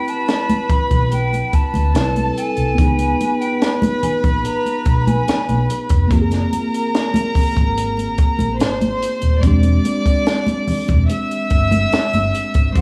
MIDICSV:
0, 0, Header, 1, 7, 480
1, 0, Start_track
1, 0, Tempo, 832178
1, 1602, Time_signature, 4, 2, 24, 8
1, 7390, End_track
2, 0, Start_track
2, 0, Title_t, "Flute"
2, 0, Program_c, 0, 73
2, 0, Note_on_c, 0, 79, 90
2, 55, Note_on_c, 0, 81, 89
2, 63, Note_off_c, 0, 79, 0
2, 412, Note_on_c, 0, 83, 82
2, 420, Note_off_c, 0, 81, 0
2, 647, Note_off_c, 0, 83, 0
2, 650, Note_on_c, 0, 79, 85
2, 892, Note_on_c, 0, 81, 97
2, 901, Note_off_c, 0, 79, 0
2, 1366, Note_off_c, 0, 81, 0
2, 1369, Note_on_c, 0, 80, 92
2, 1967, Note_on_c, 0, 79, 72
2, 1976, Note_off_c, 0, 80, 0
2, 2169, Note_off_c, 0, 79, 0
2, 2325, Note_on_c, 0, 80, 66
2, 2378, Note_off_c, 0, 80, 0
2, 2565, Note_on_c, 0, 82, 82
2, 2861, Note_off_c, 0, 82, 0
2, 2889, Note_on_c, 0, 82, 54
2, 2926, Note_on_c, 0, 80, 73
2, 2935, Note_off_c, 0, 82, 0
2, 3284, Note_off_c, 0, 80, 0
2, 7368, Note_on_c, 0, 79, 95
2, 7390, Note_off_c, 0, 79, 0
2, 7390, End_track
3, 0, Start_track
3, 0, Title_t, "Violin section"
3, 0, Program_c, 1, 48
3, 0, Note_on_c, 1, 71, 74
3, 0, Note_on_c, 1, 83, 87
3, 1100, Note_off_c, 1, 71, 0
3, 1100, Note_off_c, 1, 83, 0
3, 1129, Note_on_c, 1, 69, 66
3, 1130, Note_on_c, 1, 81, 78
3, 1596, Note_off_c, 1, 69, 0
3, 1597, Note_off_c, 1, 81, 0
3, 1606, Note_on_c, 1, 71, 82
3, 1609, Note_on_c, 1, 83, 85
3, 3501, Note_off_c, 1, 71, 0
3, 3503, Note_off_c, 1, 83, 0
3, 3518, Note_on_c, 1, 70, 75
3, 3518, Note_on_c, 1, 82, 91
3, 4936, Note_off_c, 1, 70, 0
3, 4936, Note_off_c, 1, 82, 0
3, 4961, Note_on_c, 1, 72, 68
3, 4962, Note_on_c, 1, 84, 75
3, 5431, Note_off_c, 1, 72, 0
3, 5432, Note_off_c, 1, 84, 0
3, 5437, Note_on_c, 1, 74, 83
3, 5441, Note_on_c, 1, 86, 88
3, 6379, Note_off_c, 1, 74, 0
3, 6381, Note_off_c, 1, 86, 0
3, 6400, Note_on_c, 1, 76, 76
3, 6402, Note_on_c, 1, 88, 88
3, 7340, Note_off_c, 1, 76, 0
3, 7341, Note_off_c, 1, 88, 0
3, 7360, Note_on_c, 1, 84, 87
3, 7361, Note_on_c, 1, 72, 77
3, 7390, Note_off_c, 1, 72, 0
3, 7390, Note_off_c, 1, 84, 0
3, 7390, End_track
4, 0, Start_track
4, 0, Title_t, "Tine electric piano"
4, 0, Program_c, 2, 4
4, 0, Control_c, 2, 64, 127
4, 0, Note_on_c, 2, 60, 53
4, 0, Note_on_c, 2, 64, 46
4, 0, Note_on_c, 2, 67, 50
4, 0, Note_on_c, 2, 71, 61
4, 1097, Note_off_c, 2, 64, 0
4, 1104, Note_off_c, 2, 67, 0
4, 1108, Note_off_c, 2, 60, 0
4, 1112, Note_off_c, 2, 71, 0
4, 1117, Note_on_c, 2, 60, 42
4, 1125, Note_on_c, 2, 64, 44
4, 1133, Note_on_c, 2, 55, 39
4, 1139, Note_on_c, 2, 71, 52
4, 1584, Note_on_c, 2, 59, 63
4, 1600, Note_off_c, 2, 60, 0
4, 1600, Note_on_c, 2, 63, 58
4, 1604, Note_off_c, 2, 64, 0
4, 1608, Note_off_c, 2, 55, 0
4, 1610, Control_c, 2, 64, 0
4, 1611, Note_off_c, 2, 71, 0
4, 1613, Note_on_c, 2, 65, 50
4, 1627, Note_on_c, 2, 68, 62
4, 1706, Control_c, 2, 64, 127
4, 3490, Note_off_c, 2, 59, 0
4, 3498, Note_off_c, 2, 63, 0
4, 3504, Note_off_c, 2, 65, 0
4, 3504, Note_on_c, 2, 58, 68
4, 3511, Note_off_c, 2, 68, 0
4, 3519, Note_on_c, 2, 60, 58
4, 3529, Control_c, 2, 64, 0
4, 3532, Note_on_c, 2, 65, 68
4, 3546, Note_on_c, 2, 67, 60
4, 3572, Note_off_c, 2, 67, 0
4, 3583, Note_on_c, 2, 68, 70
4, 3631, Control_c, 2, 64, 127
4, 5409, Note_off_c, 2, 58, 0
4, 5416, Note_off_c, 2, 60, 0
4, 5423, Note_off_c, 2, 65, 0
4, 5423, Note_on_c, 2, 55, 54
4, 5438, Note_on_c, 2, 60, 69
4, 5448, Control_c, 2, 64, 0
4, 5449, Note_off_c, 2, 68, 0
4, 5452, Note_on_c, 2, 62, 68
4, 5462, Note_on_c, 2, 56, 69
4, 5464, Note_on_c, 2, 67, 75
4, 5470, Note_off_c, 2, 55, 0
4, 5551, Control_c, 2, 64, 127
4, 7335, Note_off_c, 2, 60, 0
4, 7340, Note_on_c, 2, 55, 56
4, 7342, Note_off_c, 2, 62, 0
4, 7347, Note_off_c, 2, 56, 0
4, 7348, Note_off_c, 2, 67, 0
4, 7354, Note_on_c, 2, 57, 48
4, 7367, Control_c, 2, 64, 0
4, 7367, Note_on_c, 2, 60, 52
4, 7390, Note_off_c, 2, 55, 0
4, 7390, Note_off_c, 2, 57, 0
4, 7390, Note_off_c, 2, 60, 0
4, 7390, End_track
5, 0, Start_track
5, 0, Title_t, "Fingered electric bass"
5, 0, Program_c, 3, 33
5, 524, Note_on_c, 3, 35, 72
5, 814, Note_off_c, 3, 35, 0
5, 1006, Note_on_c, 3, 38, 83
5, 1102, Note_off_c, 3, 38, 0
5, 1123, Note_on_c, 3, 36, 84
5, 1317, Note_off_c, 3, 36, 0
5, 1485, Note_on_c, 3, 36, 77
5, 1581, Note_off_c, 3, 36, 0
5, 1606, Note_on_c, 3, 37, 82
5, 1799, Note_off_c, 3, 37, 0
5, 2447, Note_on_c, 3, 34, 76
5, 2542, Note_off_c, 3, 34, 0
5, 2804, Note_on_c, 3, 35, 73
5, 2997, Note_off_c, 3, 35, 0
5, 3166, Note_on_c, 3, 35, 78
5, 3262, Note_off_c, 3, 35, 0
5, 3405, Note_on_c, 3, 29, 78
5, 3501, Note_off_c, 3, 29, 0
5, 3522, Note_on_c, 3, 30, 89
5, 3716, Note_off_c, 3, 30, 0
5, 4365, Note_on_c, 3, 32, 83
5, 4654, Note_off_c, 3, 32, 0
5, 4844, Note_on_c, 3, 34, 82
5, 4964, Note_off_c, 3, 34, 0
5, 4964, Note_on_c, 3, 32, 72
5, 5157, Note_off_c, 3, 32, 0
5, 5321, Note_on_c, 3, 27, 79
5, 5418, Note_off_c, 3, 27, 0
5, 5441, Note_on_c, 3, 28, 89
5, 5635, Note_off_c, 3, 28, 0
5, 6280, Note_on_c, 3, 28, 72
5, 6377, Note_off_c, 3, 28, 0
5, 6638, Note_on_c, 3, 31, 75
5, 6833, Note_off_c, 3, 31, 0
5, 6998, Note_on_c, 3, 31, 65
5, 7096, Note_off_c, 3, 31, 0
5, 7239, Note_on_c, 3, 32, 73
5, 7336, Note_off_c, 3, 32, 0
5, 7357, Note_on_c, 3, 33, 92
5, 7390, Note_off_c, 3, 33, 0
5, 7390, End_track
6, 0, Start_track
6, 0, Title_t, "Muted fingered electric bass strokes"
6, 402, Note_on_c, 9, 29, 42
6, 460, Note_off_c, 9, 29, 0
6, 886, Note_on_c, 9, 29, 40
6, 943, Note_off_c, 9, 29, 0
6, 2324, Note_on_c, 9, 29, 39
6, 2381, Note_off_c, 9, 29, 0
6, 3046, Note_on_c, 9, 29, 42
6, 3104, Note_off_c, 9, 29, 0
6, 4242, Note_on_c, 9, 29, 39
6, 4299, Note_off_c, 9, 29, 0
6, 4722, Note_on_c, 9, 29, 41
6, 4780, Note_off_c, 9, 29, 0
6, 6165, Note_on_c, 9, 29, 39
6, 6223, Note_off_c, 9, 29, 0
6, 6883, Note_on_c, 9, 29, 39
6, 6940, Note_off_c, 9, 29, 0
6, 7390, End_track
7, 0, Start_track
7, 0, Title_t, "Drums"
7, 45, Note_on_c, 9, 42, 41
7, 102, Note_off_c, 9, 42, 0
7, 163, Note_on_c, 9, 42, 62
7, 166, Note_on_c, 9, 38, 87
7, 172, Note_on_c, 9, 62, 25
7, 221, Note_off_c, 9, 42, 0
7, 223, Note_off_c, 9, 38, 0
7, 229, Note_off_c, 9, 62, 0
7, 285, Note_on_c, 9, 42, 47
7, 285, Note_on_c, 9, 62, 31
7, 285, Note_on_c, 9, 63, 73
7, 343, Note_off_c, 9, 42, 0
7, 343, Note_off_c, 9, 62, 0
7, 343, Note_off_c, 9, 63, 0
7, 401, Note_on_c, 9, 36, 88
7, 402, Note_on_c, 9, 42, 71
7, 404, Note_on_c, 9, 64, 58
7, 459, Note_off_c, 9, 36, 0
7, 460, Note_off_c, 9, 42, 0
7, 461, Note_off_c, 9, 64, 0
7, 524, Note_on_c, 9, 36, 64
7, 525, Note_on_c, 9, 42, 42
7, 525, Note_on_c, 9, 64, 62
7, 582, Note_off_c, 9, 36, 0
7, 583, Note_off_c, 9, 42, 0
7, 583, Note_off_c, 9, 64, 0
7, 644, Note_on_c, 9, 42, 67
7, 649, Note_on_c, 9, 62, 31
7, 701, Note_off_c, 9, 42, 0
7, 706, Note_off_c, 9, 62, 0
7, 767, Note_on_c, 9, 62, 27
7, 771, Note_on_c, 9, 42, 46
7, 825, Note_off_c, 9, 62, 0
7, 829, Note_off_c, 9, 42, 0
7, 883, Note_on_c, 9, 42, 47
7, 884, Note_on_c, 9, 36, 70
7, 940, Note_off_c, 9, 42, 0
7, 942, Note_off_c, 9, 36, 0
7, 1002, Note_on_c, 9, 63, 71
7, 1009, Note_on_c, 9, 42, 46
7, 1060, Note_off_c, 9, 63, 0
7, 1067, Note_off_c, 9, 42, 0
7, 1122, Note_on_c, 9, 62, 26
7, 1125, Note_on_c, 9, 42, 71
7, 1131, Note_on_c, 9, 38, 91
7, 1180, Note_off_c, 9, 62, 0
7, 1183, Note_off_c, 9, 42, 0
7, 1189, Note_off_c, 9, 38, 0
7, 1246, Note_on_c, 9, 42, 39
7, 1250, Note_on_c, 9, 63, 58
7, 1304, Note_off_c, 9, 42, 0
7, 1308, Note_off_c, 9, 63, 0
7, 1370, Note_on_c, 9, 42, 78
7, 1428, Note_off_c, 9, 42, 0
7, 1480, Note_on_c, 9, 42, 44
7, 1538, Note_off_c, 9, 42, 0
7, 1605, Note_on_c, 9, 36, 101
7, 1606, Note_on_c, 9, 42, 73
7, 1611, Note_on_c, 9, 64, 69
7, 1663, Note_off_c, 9, 36, 0
7, 1664, Note_off_c, 9, 42, 0
7, 1669, Note_off_c, 9, 64, 0
7, 1722, Note_on_c, 9, 42, 52
7, 1724, Note_on_c, 9, 62, 35
7, 1780, Note_off_c, 9, 42, 0
7, 1781, Note_off_c, 9, 62, 0
7, 1849, Note_on_c, 9, 42, 65
7, 1851, Note_on_c, 9, 63, 42
7, 1906, Note_off_c, 9, 42, 0
7, 1909, Note_off_c, 9, 63, 0
7, 1970, Note_on_c, 9, 42, 47
7, 2028, Note_off_c, 9, 42, 0
7, 2086, Note_on_c, 9, 42, 69
7, 2089, Note_on_c, 9, 38, 93
7, 2091, Note_on_c, 9, 62, 24
7, 2144, Note_off_c, 9, 42, 0
7, 2146, Note_off_c, 9, 38, 0
7, 2149, Note_off_c, 9, 62, 0
7, 2204, Note_on_c, 9, 62, 38
7, 2204, Note_on_c, 9, 63, 77
7, 2210, Note_on_c, 9, 42, 45
7, 2261, Note_off_c, 9, 62, 0
7, 2261, Note_off_c, 9, 63, 0
7, 2268, Note_off_c, 9, 42, 0
7, 2324, Note_on_c, 9, 42, 71
7, 2324, Note_on_c, 9, 64, 63
7, 2382, Note_off_c, 9, 42, 0
7, 2382, Note_off_c, 9, 64, 0
7, 2445, Note_on_c, 9, 36, 69
7, 2445, Note_on_c, 9, 64, 66
7, 2449, Note_on_c, 9, 42, 43
7, 2503, Note_off_c, 9, 36, 0
7, 2503, Note_off_c, 9, 64, 0
7, 2507, Note_off_c, 9, 42, 0
7, 2565, Note_on_c, 9, 42, 69
7, 2622, Note_off_c, 9, 42, 0
7, 2686, Note_on_c, 9, 62, 25
7, 2690, Note_on_c, 9, 42, 43
7, 2743, Note_off_c, 9, 62, 0
7, 2747, Note_off_c, 9, 42, 0
7, 2800, Note_on_c, 9, 42, 48
7, 2803, Note_on_c, 9, 36, 73
7, 2857, Note_off_c, 9, 42, 0
7, 2860, Note_off_c, 9, 36, 0
7, 2926, Note_on_c, 9, 63, 76
7, 2927, Note_on_c, 9, 42, 39
7, 2984, Note_off_c, 9, 63, 0
7, 2985, Note_off_c, 9, 42, 0
7, 3044, Note_on_c, 9, 62, 28
7, 3046, Note_on_c, 9, 42, 76
7, 3053, Note_on_c, 9, 38, 87
7, 3102, Note_off_c, 9, 62, 0
7, 3104, Note_off_c, 9, 42, 0
7, 3111, Note_off_c, 9, 38, 0
7, 3165, Note_on_c, 9, 42, 41
7, 3169, Note_on_c, 9, 63, 64
7, 3223, Note_off_c, 9, 42, 0
7, 3226, Note_off_c, 9, 63, 0
7, 3288, Note_on_c, 9, 42, 84
7, 3345, Note_off_c, 9, 42, 0
7, 3399, Note_on_c, 9, 42, 51
7, 3404, Note_on_c, 9, 36, 74
7, 3457, Note_off_c, 9, 42, 0
7, 3462, Note_off_c, 9, 36, 0
7, 3523, Note_on_c, 9, 36, 100
7, 3525, Note_on_c, 9, 42, 73
7, 3531, Note_on_c, 9, 62, 28
7, 3531, Note_on_c, 9, 64, 64
7, 3580, Note_off_c, 9, 36, 0
7, 3583, Note_off_c, 9, 42, 0
7, 3588, Note_off_c, 9, 62, 0
7, 3588, Note_off_c, 9, 64, 0
7, 3639, Note_on_c, 9, 62, 35
7, 3642, Note_on_c, 9, 42, 50
7, 3650, Note_on_c, 9, 38, 31
7, 3697, Note_off_c, 9, 62, 0
7, 3700, Note_off_c, 9, 42, 0
7, 3708, Note_off_c, 9, 38, 0
7, 3765, Note_on_c, 9, 42, 63
7, 3767, Note_on_c, 9, 63, 48
7, 3823, Note_off_c, 9, 42, 0
7, 3824, Note_off_c, 9, 63, 0
7, 3889, Note_on_c, 9, 42, 47
7, 3947, Note_off_c, 9, 42, 0
7, 4006, Note_on_c, 9, 42, 68
7, 4008, Note_on_c, 9, 62, 26
7, 4009, Note_on_c, 9, 38, 93
7, 4064, Note_off_c, 9, 42, 0
7, 4066, Note_off_c, 9, 38, 0
7, 4066, Note_off_c, 9, 62, 0
7, 4119, Note_on_c, 9, 62, 38
7, 4119, Note_on_c, 9, 63, 74
7, 4128, Note_on_c, 9, 42, 55
7, 4176, Note_off_c, 9, 62, 0
7, 4176, Note_off_c, 9, 63, 0
7, 4185, Note_off_c, 9, 42, 0
7, 4238, Note_on_c, 9, 64, 60
7, 4241, Note_on_c, 9, 36, 82
7, 4244, Note_on_c, 9, 46, 53
7, 4296, Note_off_c, 9, 64, 0
7, 4298, Note_off_c, 9, 36, 0
7, 4302, Note_off_c, 9, 46, 0
7, 4361, Note_on_c, 9, 64, 57
7, 4364, Note_on_c, 9, 36, 71
7, 4371, Note_on_c, 9, 42, 42
7, 4419, Note_off_c, 9, 64, 0
7, 4422, Note_off_c, 9, 36, 0
7, 4428, Note_off_c, 9, 42, 0
7, 4485, Note_on_c, 9, 42, 74
7, 4543, Note_off_c, 9, 42, 0
7, 4599, Note_on_c, 9, 62, 27
7, 4608, Note_on_c, 9, 42, 45
7, 4657, Note_off_c, 9, 62, 0
7, 4666, Note_off_c, 9, 42, 0
7, 4717, Note_on_c, 9, 42, 48
7, 4721, Note_on_c, 9, 36, 78
7, 4775, Note_off_c, 9, 42, 0
7, 4779, Note_off_c, 9, 36, 0
7, 4838, Note_on_c, 9, 63, 69
7, 4846, Note_on_c, 9, 42, 45
7, 4896, Note_off_c, 9, 63, 0
7, 4903, Note_off_c, 9, 42, 0
7, 4958, Note_on_c, 9, 62, 26
7, 4962, Note_on_c, 9, 42, 77
7, 4969, Note_on_c, 9, 38, 89
7, 5016, Note_off_c, 9, 62, 0
7, 5020, Note_off_c, 9, 42, 0
7, 5026, Note_off_c, 9, 38, 0
7, 5083, Note_on_c, 9, 42, 40
7, 5085, Note_on_c, 9, 63, 61
7, 5141, Note_off_c, 9, 42, 0
7, 5142, Note_off_c, 9, 63, 0
7, 5205, Note_on_c, 9, 42, 86
7, 5263, Note_off_c, 9, 42, 0
7, 5315, Note_on_c, 9, 42, 49
7, 5373, Note_off_c, 9, 42, 0
7, 5439, Note_on_c, 9, 42, 80
7, 5440, Note_on_c, 9, 36, 94
7, 5445, Note_on_c, 9, 62, 29
7, 5445, Note_on_c, 9, 64, 69
7, 5497, Note_off_c, 9, 36, 0
7, 5497, Note_off_c, 9, 42, 0
7, 5502, Note_off_c, 9, 62, 0
7, 5502, Note_off_c, 9, 64, 0
7, 5555, Note_on_c, 9, 42, 49
7, 5557, Note_on_c, 9, 62, 34
7, 5612, Note_off_c, 9, 42, 0
7, 5615, Note_off_c, 9, 62, 0
7, 5681, Note_on_c, 9, 42, 69
7, 5683, Note_on_c, 9, 63, 43
7, 5739, Note_off_c, 9, 42, 0
7, 5740, Note_off_c, 9, 63, 0
7, 5801, Note_on_c, 9, 36, 73
7, 5804, Note_on_c, 9, 42, 45
7, 5858, Note_off_c, 9, 36, 0
7, 5861, Note_off_c, 9, 42, 0
7, 5921, Note_on_c, 9, 42, 69
7, 5923, Note_on_c, 9, 38, 92
7, 5926, Note_on_c, 9, 62, 26
7, 5978, Note_off_c, 9, 42, 0
7, 5981, Note_off_c, 9, 38, 0
7, 5984, Note_off_c, 9, 62, 0
7, 6037, Note_on_c, 9, 63, 72
7, 6043, Note_on_c, 9, 42, 50
7, 6094, Note_off_c, 9, 63, 0
7, 6101, Note_off_c, 9, 42, 0
7, 6157, Note_on_c, 9, 64, 69
7, 6159, Note_on_c, 9, 46, 50
7, 6215, Note_off_c, 9, 64, 0
7, 6216, Note_off_c, 9, 46, 0
7, 6277, Note_on_c, 9, 64, 62
7, 6280, Note_on_c, 9, 36, 75
7, 6285, Note_on_c, 9, 42, 41
7, 6335, Note_off_c, 9, 64, 0
7, 6338, Note_off_c, 9, 36, 0
7, 6343, Note_off_c, 9, 42, 0
7, 6400, Note_on_c, 9, 42, 73
7, 6403, Note_on_c, 9, 62, 29
7, 6457, Note_off_c, 9, 42, 0
7, 6460, Note_off_c, 9, 62, 0
7, 6525, Note_on_c, 9, 42, 44
7, 6582, Note_off_c, 9, 42, 0
7, 6634, Note_on_c, 9, 42, 43
7, 6638, Note_on_c, 9, 36, 65
7, 6691, Note_off_c, 9, 42, 0
7, 6695, Note_off_c, 9, 36, 0
7, 6757, Note_on_c, 9, 63, 75
7, 6761, Note_on_c, 9, 42, 49
7, 6815, Note_off_c, 9, 63, 0
7, 6818, Note_off_c, 9, 42, 0
7, 6878, Note_on_c, 9, 42, 66
7, 6884, Note_on_c, 9, 38, 97
7, 6936, Note_off_c, 9, 42, 0
7, 6942, Note_off_c, 9, 38, 0
7, 6997, Note_on_c, 9, 42, 41
7, 7006, Note_on_c, 9, 62, 32
7, 7006, Note_on_c, 9, 63, 61
7, 7055, Note_off_c, 9, 42, 0
7, 7064, Note_off_c, 9, 62, 0
7, 7064, Note_off_c, 9, 63, 0
7, 7121, Note_on_c, 9, 42, 75
7, 7179, Note_off_c, 9, 42, 0
7, 7233, Note_on_c, 9, 42, 51
7, 7239, Note_on_c, 9, 36, 81
7, 7291, Note_off_c, 9, 42, 0
7, 7297, Note_off_c, 9, 36, 0
7, 7357, Note_on_c, 9, 36, 106
7, 7357, Note_on_c, 9, 42, 72
7, 7365, Note_on_c, 9, 64, 73
7, 7390, Note_off_c, 9, 36, 0
7, 7390, Note_off_c, 9, 42, 0
7, 7390, Note_off_c, 9, 64, 0
7, 7390, End_track
0, 0, End_of_file